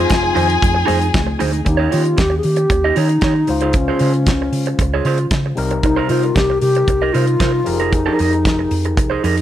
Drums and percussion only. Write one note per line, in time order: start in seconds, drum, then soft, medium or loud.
0.10 kick loud
0.10 snare loud
0.10 closed hi-hat medium
0.10 high conga medium
0.36 open hi-hat medium
0.36 low conga medium
0.50 closed hi-hat soft
0.62 kick loud
0.62 closed hi-hat medium
0.62 muted conga medium
0.88 open hi-hat medium
0.88 muted conga medium
1.02 closed hi-hat soft
1.14 kick loud
1.14 snare loud
1.14 closed hi-hat medium
1.14 high conga medium
1.40 open hi-hat medium
1.40 high conga medium
1.53 closed hi-hat soft
1.66 kick medium
1.66 closed hi-hat medium
1.92 open hi-hat medium
2.05 closed hi-hat soft
2.18 kick loud
2.18 snare loud
2.18 closed hi-hat medium
2.43 open hi-hat medium
2.56 closed hi-hat soft
2.70 kick loud
2.70 closed hi-hat medium
2.96 open hi-hat medium
3.09 closed hi-hat soft
3.21 kick loud
3.21 snare loud
3.21 closed hi-hat medium
3.47 open hi-hat medium
3.61 closed hi-hat soft
3.73 kick loud
3.73 closed hi-hat medium
3.99 open hi-hat medium
4.14 closed hi-hat soft
4.26 kick loud
4.26 snare loud
4.26 closed hi-hat medium
4.53 open hi-hat medium
4.66 closed hi-hat medium
4.79 kick loud
4.79 closed hi-hat medium
5.05 open hi-hat medium
5.18 closed hi-hat soft
5.31 kick loud
5.31 snare loud
5.31 closed hi-hat medium
5.57 open hi-hat medium
5.71 closed hi-hat soft
5.83 kick loud
5.83 closed hi-hat medium
6.09 open hi-hat medium
6.23 closed hi-hat soft
6.36 kick loud
6.36 snare loud
6.36 closed hi-hat medium
6.62 open hi-hat medium
6.75 closed hi-hat soft
6.88 kick loud
6.88 closed hi-hat medium
7.14 open hi-hat medium
7.27 closed hi-hat soft
7.40 kick loud
7.40 snare loud
7.40 closed hi-hat medium
7.66 open hi-hat medium
7.80 closed hi-hat soft
7.93 kick loud
7.93 closed hi-hat medium
8.19 open hi-hat medium
8.33 closed hi-hat soft
8.45 kick loud
8.45 snare medium
8.45 closed hi-hat medium
8.71 open hi-hat medium
8.85 closed hi-hat soft
8.97 kick loud
8.97 closed hi-hat medium
9.24 open hi-hat medium
9.37 closed hi-hat soft